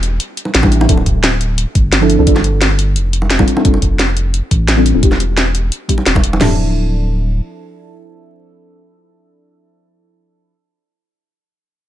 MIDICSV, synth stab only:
0, 0, Header, 1, 2, 480
1, 0, Start_track
1, 0, Tempo, 344828
1, 1237, Time_signature, 4, 2, 24, 8
1, 16538, End_track
2, 0, Start_track
2, 0, Title_t, "Synth stab"
2, 0, Program_c, 0, 62
2, 872, Note_on_c, 0, 55, 90
2, 877, Note_on_c, 0, 59, 80
2, 881, Note_on_c, 0, 62, 83
2, 887, Note_on_c, 0, 64, 80
2, 892, Note_on_c, 0, 67, 99
2, 1087, Note_off_c, 0, 55, 0
2, 1089, Note_off_c, 0, 59, 0
2, 1092, Note_off_c, 0, 62, 0
2, 1095, Note_off_c, 0, 64, 0
2, 1097, Note_off_c, 0, 67, 0
2, 1111, Note_on_c, 0, 55, 80
2, 1117, Note_on_c, 0, 59, 74
2, 1120, Note_on_c, 0, 62, 72
2, 1126, Note_on_c, 0, 64, 73
2, 1133, Note_on_c, 0, 67, 87
2, 1215, Note_off_c, 0, 55, 0
2, 1218, Note_off_c, 0, 59, 0
2, 1220, Note_off_c, 0, 62, 0
2, 1223, Note_off_c, 0, 64, 0
2, 1226, Note_off_c, 0, 67, 0
2, 1226, Note_on_c, 0, 53, 84
2, 1231, Note_on_c, 0, 60, 78
2, 1236, Note_on_c, 0, 62, 79
2, 1241, Note_on_c, 0, 64, 81
2, 1247, Note_on_c, 0, 69, 96
2, 1352, Note_off_c, 0, 53, 0
2, 1354, Note_off_c, 0, 60, 0
2, 1357, Note_off_c, 0, 62, 0
2, 1359, Note_off_c, 0, 64, 0
2, 1362, Note_off_c, 0, 69, 0
2, 2792, Note_on_c, 0, 53, 90
2, 2799, Note_on_c, 0, 60, 83
2, 2804, Note_on_c, 0, 62, 85
2, 2809, Note_on_c, 0, 64, 81
2, 2814, Note_on_c, 0, 69, 98
2, 3007, Note_off_c, 0, 53, 0
2, 3011, Note_off_c, 0, 60, 0
2, 3013, Note_off_c, 0, 62, 0
2, 3016, Note_off_c, 0, 64, 0
2, 3018, Note_off_c, 0, 69, 0
2, 3031, Note_on_c, 0, 53, 82
2, 3037, Note_on_c, 0, 60, 72
2, 3042, Note_on_c, 0, 62, 74
2, 3048, Note_on_c, 0, 64, 74
2, 3052, Note_on_c, 0, 69, 89
2, 3135, Note_off_c, 0, 53, 0
2, 3139, Note_off_c, 0, 60, 0
2, 3141, Note_off_c, 0, 62, 0
2, 3144, Note_off_c, 0, 64, 0
2, 3146, Note_off_c, 0, 69, 0
2, 3150, Note_on_c, 0, 55, 87
2, 3155, Note_on_c, 0, 59, 79
2, 3161, Note_on_c, 0, 62, 80
2, 3165, Note_on_c, 0, 65, 79
2, 3170, Note_on_c, 0, 69, 95
2, 3274, Note_off_c, 0, 55, 0
2, 3276, Note_off_c, 0, 59, 0
2, 3279, Note_off_c, 0, 62, 0
2, 3281, Note_off_c, 0, 65, 0
2, 3284, Note_off_c, 0, 69, 0
2, 4710, Note_on_c, 0, 55, 91
2, 4715, Note_on_c, 0, 60, 82
2, 4720, Note_on_c, 0, 62, 82
2, 4725, Note_on_c, 0, 65, 83
2, 4730, Note_on_c, 0, 69, 100
2, 4926, Note_off_c, 0, 55, 0
2, 4929, Note_off_c, 0, 60, 0
2, 4931, Note_off_c, 0, 62, 0
2, 4934, Note_off_c, 0, 65, 0
2, 4936, Note_off_c, 0, 69, 0
2, 4952, Note_on_c, 0, 55, 79
2, 4959, Note_on_c, 0, 60, 72
2, 4963, Note_on_c, 0, 62, 74
2, 4969, Note_on_c, 0, 65, 75
2, 4974, Note_on_c, 0, 69, 91
2, 5051, Note_off_c, 0, 55, 0
2, 5056, Note_off_c, 0, 60, 0
2, 5061, Note_off_c, 0, 62, 0
2, 5064, Note_off_c, 0, 65, 0
2, 5067, Note_off_c, 0, 69, 0
2, 5068, Note_on_c, 0, 55, 88
2, 5073, Note_on_c, 0, 60, 81
2, 5078, Note_on_c, 0, 62, 77
2, 5083, Note_on_c, 0, 65, 79
2, 5088, Note_on_c, 0, 69, 96
2, 5193, Note_off_c, 0, 55, 0
2, 5195, Note_off_c, 0, 60, 0
2, 5198, Note_off_c, 0, 62, 0
2, 5200, Note_off_c, 0, 65, 0
2, 5203, Note_off_c, 0, 69, 0
2, 6632, Note_on_c, 0, 55, 91
2, 6636, Note_on_c, 0, 60, 80
2, 6643, Note_on_c, 0, 62, 82
2, 6648, Note_on_c, 0, 65, 82
2, 6651, Note_on_c, 0, 69, 99
2, 6847, Note_off_c, 0, 55, 0
2, 6849, Note_off_c, 0, 60, 0
2, 6853, Note_off_c, 0, 62, 0
2, 6855, Note_off_c, 0, 65, 0
2, 6857, Note_off_c, 0, 69, 0
2, 6871, Note_on_c, 0, 55, 80
2, 6876, Note_on_c, 0, 60, 72
2, 6881, Note_on_c, 0, 62, 71
2, 6886, Note_on_c, 0, 65, 71
2, 6892, Note_on_c, 0, 69, 87
2, 6972, Note_off_c, 0, 55, 0
2, 6978, Note_off_c, 0, 60, 0
2, 6980, Note_off_c, 0, 62, 0
2, 6983, Note_off_c, 0, 65, 0
2, 6986, Note_off_c, 0, 69, 0
2, 6988, Note_on_c, 0, 55, 85
2, 6993, Note_on_c, 0, 59, 80
2, 6998, Note_on_c, 0, 62, 79
2, 7004, Note_on_c, 0, 64, 78
2, 7008, Note_on_c, 0, 67, 95
2, 7113, Note_off_c, 0, 55, 0
2, 7115, Note_off_c, 0, 59, 0
2, 7118, Note_off_c, 0, 62, 0
2, 7121, Note_off_c, 0, 64, 0
2, 7123, Note_off_c, 0, 67, 0
2, 8185, Note_on_c, 0, 55, 80
2, 8190, Note_on_c, 0, 59, 75
2, 8194, Note_on_c, 0, 62, 76
2, 8200, Note_on_c, 0, 64, 74
2, 8205, Note_on_c, 0, 67, 89
2, 8379, Note_off_c, 0, 55, 0
2, 8382, Note_off_c, 0, 59, 0
2, 8384, Note_off_c, 0, 62, 0
2, 8387, Note_off_c, 0, 64, 0
2, 8389, Note_off_c, 0, 67, 0
2, 8889, Note_on_c, 0, 53, 85
2, 8903, Note_on_c, 0, 60, 75
2, 8918, Note_on_c, 0, 62, 74
2, 8932, Note_on_c, 0, 64, 77
2, 8949, Note_on_c, 0, 69, 91
2, 14651, Note_off_c, 0, 53, 0
2, 14665, Note_off_c, 0, 60, 0
2, 14680, Note_off_c, 0, 62, 0
2, 14694, Note_off_c, 0, 64, 0
2, 14711, Note_off_c, 0, 69, 0
2, 16538, End_track
0, 0, End_of_file